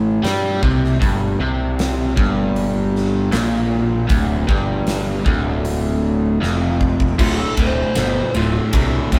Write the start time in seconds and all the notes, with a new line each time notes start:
Already playing: A1 A2
0.23 G2 G3, snare, open hi-hat
0.63 C2 C3, kick
0.84 snare
1.00 G1 G2, kick, open hi-hat
1.40 C2 C3
1.79 snare, open hi-hat
2.17 G1 G2, kick
2.56 open hi-hat
2.96 snare
3.32 A#1 A#2, snare, open hi-hat
4.08 D1 D2, kick, open hi-hat
4.48 G1 G2, kick
4.87 snare, open hi-hat
5.26 D1 D2, kick
5.65 open hi-hat
6.41 F1 F2, snare
6.81 kick
7.00 kick
7.19 D1 D2 A2 F4, kick, crash
7.38 A4
7.57 D1 D2 A2 C5, kick, ride
7.95 G1 D2 B2, snare, ride
8.35 D1 D2 A2 F4, ride
8.73 C2 D2 A2 D4, kick, ride
9.12 D1 D2 A2 D4, kick, snare, ride